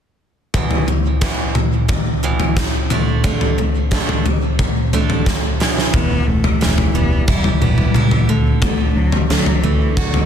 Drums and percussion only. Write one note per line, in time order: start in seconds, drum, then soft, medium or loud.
0.54 kick medium
0.54 floor tom medium
0.71 floor tom medium
0.88 floor tom medium
1.22 kick loud
1.22 snare medium
1.55 floor tom medium
1.55 mid tom medium
1.89 kick medium
1.89 floor tom medium
2.40 floor tom medium
2.57 kick medium
2.57 snare medium
2.90 floor tom medium
2.90 mid tom medium
3.24 kick medium
3.24 floor tom medium
3.41 floor tom medium
3.58 floor tom medium
3.92 kick loud
3.92 snare medium
4.09 floor tom medium
4.26 floor tom medium
4.59 kick medium
4.59 floor tom medium
4.59 mid tom medium
4.93 floor tom medium
5.10 floor tom medium
5.26 kick loud
5.26 snare medium
5.61 snare medium
5.78 snare medium
5.94 kick medium
5.94 floor tom medium
6.44 floor tom medium
6.62 snare medium
6.78 floor tom medium
7.28 kick loud
7.44 floor tom medium
7.62 mid tom medium
7.78 mid tom medium
7.94 mid tom medium
8.11 floor tom medium
8.62 kick medium
8.62 floor tom medium
9.12 floor tom medium
9.31 snare medium
9.46 floor tom medium
9.97 kick loud
10.14 floor tom medium